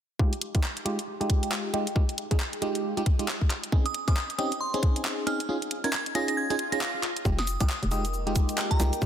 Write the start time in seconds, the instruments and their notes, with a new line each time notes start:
0.19 fm electric piano G#3 D#4 F4 G4, kick
0.33 closed hi-hat
0.41 closed hi-hat
0.54 fm electric piano G#3 D#4 F4 G4, kick, closed hi-hat
0.63 clap
0.77 closed hi-hat
0.85 fm electric piano G#3 D#4 F4 G4, closed hi-hat
0.99 closed hi-hat
1.21 fm electric piano G#3 D#4 F4 G4, closed hi-hat
1.30 kick, closed hi-hat
1.43 closed hi-hat
1.52 clap
1.74 fm electric piano G#3 D#4 F4 G4, closed hi-hat
1.87 closed hi-hat
1.96 fm electric piano G#3 D#4 F4 G4, kick
2.09 closed hi-hat
2.18 closed hi-hat
2.31 fm electric piano G#3 D#4 F4 G#4, kick, closed hi-hat
2.40 clap
2.53 closed hi-hat
2.62 fm electric piano G#3 D#4 F4 G4, closed hi-hat
2.75 closed hi-hat
2.97 fm electric piano G#3 D#4 F4 G4, closed hi-hat
3.06 kick, closed hi-hat
3.19 fm electric piano G#3 D#4 F4 G4, closed hi-hat
3.28 clap
3.41 kick
3.50 clap, closed hi-hat
3.64 closed hi-hat
3.72 fm electric piano C4 C#4 D#4 G#4, kick
3.86 synth bell D#6, closed hi-hat
3.94 closed hi-hat
4.08 fm electric piano C4 C#4 D#4 G#4, synth bell D#6, kick, closed hi-hat
4.17 clap
4.30 closed hi-hat
4.38 fm electric piano C4 C#4 D#4 G4, synth bell D#6, closed hi-hat
4.52 closed hi-hat
4.61 synth bell C6
4.74 fm electric piano C4 C#4 D#4 G#4, closed hi-hat
4.83 kick, closed hi-hat
4.96 closed hi-hat
5.05 clap
5.27 fm electric piano C4 C#4 D#4 G#4, synth bell F6, closed hi-hat
5.40 closed hi-hat
5.49 fm electric piano C#4 D#4 F4 G#4
5.62 closed hi-hat
5.71 closed hi-hat
5.84 fm electric piano C#4 D#4 F4 A#4, synth bell G#6, closed hi-hat
5.93 synth bell G#6, clap
6.06 closed hi-hat
6.15 fm electric piano C#4 D#4 F4 G#4, synth bell A#6, closed hi-hat
6.28 synth bell A#6, closed hi-hat
6.37 synth bell G#6, swell
6.50 fm electric piano C#4 D#4 F4 G#4, synth bell G#6, closed hi-hat
6.59 closed hi-hat
6.72 fm electric piano C#4 D#4 F4 G#4, synth bell A#6, closed hi-hat
6.81 clap
7.03 clap, closed hi-hat
7.16 closed hi-hat
7.25 fm bass F1, fm electric piano G#3 D#4 F4 G4, ambient pad A#4, kick, cabasa
7.37 ambient pad D#5, synth bell D#6, snare, closed hi-hat
7.47 closed hi-hat, cabasa
7.60 fm bass C2, fm electric piano G#3 D#4 F4 G4, synth bell D#6, kick, closed hi-hat, cabasa
7.69 clap, cabasa
7.83 fm bass F1, closed hi-hat
7.87 fm electric piano G#3 D#4 F4 G4, ambient pad G5
7.91 synth bell D#6, closed hi-hat, cabasa
8.05 closed hi-hat, cabasa
8.14 cabasa
8.27 fm electric piano G#3 D#4 F4 G4, closed hi-hat
8.36 kick, closed hi-hat, cabasa
8.49 closed hi-hat, cabasa
8.58 clap, cabasa
8.71 synth bell A#5, kick, closed hi-hat
8.80 fm bass C2, fm electric piano G#3 D#4 F4 G4, snare, closed hi-hat, cabasa
8.93 closed hi-hat, cabasa
9.02 fm bass F1, fm electric piano G#3 D#4 F4 G4, kick, cabasa